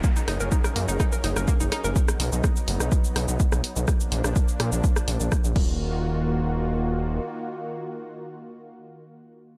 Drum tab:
CC |----------------|----------------|--------------x-|----------------|
HH |--o---o---o---o-|--o---o---o---o-|--o---o---o-----|----------------|
SH |xx-xxx-xxx-xxx-x|xx-xxx-xxx-xxx-x|xx-xxx-xxx-xxx--|----------------|
SD |--r--r--r--r--r-|-r--r--r--r--r--|r--r--r--r--r---|----------------|
BD |o---o---o---o---|o---o---o---o---|o---o---o---o-o-|----------------|

CC |----------------|
HH |----------------|
SH |----------------|
SD |----------------|
BD |----------------|